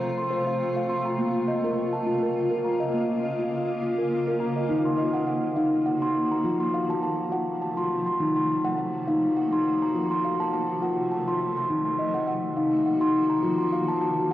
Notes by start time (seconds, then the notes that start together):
Already playing: C3 F3 A3 F4 C5 F5 A#5
0.18 C6
0.30 C5
0.47 F5
0.77 F5
0.89 C6
1.05 A#5
1.18 C#3 A#3 F4
1.48 D#5
1.64 F4 A#4
1.93 A5
2.07 F4
2.23 A#4
2.51 A#4
2.65 A#5
2.80 D#5
2.94 A#3
3.23 D#5
3.39 F4
3.83 F4
3.99 A#4
4.28 A#4
4.40 A#5
4.56 D#5
4.69 D#3 A#3 D#4 F#4
4.85 C6
4.98 D#5
5.13 F#5
5.27 F#5
5.56 D#4 F5
5.86 F#5
6.02 D#4 C6
6.31 A#5
6.44 C3 F3 A3 F4
6.60 C6
6.74 F5
6.90 A5
7.03 A5
7.32 F4 F#5
7.62 A5
7.77 F4 C6
8.06 C6
8.19 D#3 A#3 D#4 F#4
8.36 C6
8.65 F#5
8.78 F#5
9.08 D#4 F5
9.37 F#5
9.53 D#4 C6
9.82 A#5
9.94 C3 F3 A3 F4
10.11 C6
10.25 F5
10.40 A5
10.53 A5
10.82 F4 F#5
11.12 A5
11.28 F4 C6
11.57 C6
11.70 D#3 A#3 D#4 F#4
11.85 C6
11.99 D#5
12.14 F#5
12.27 F#5
12.57 D#4 F5
12.86 F#5
13.01 D#4 C6
13.30 A#5
13.43 C3 F3 A3 F4
13.58 C6
13.73 F5
13.88 A5
14.01 A5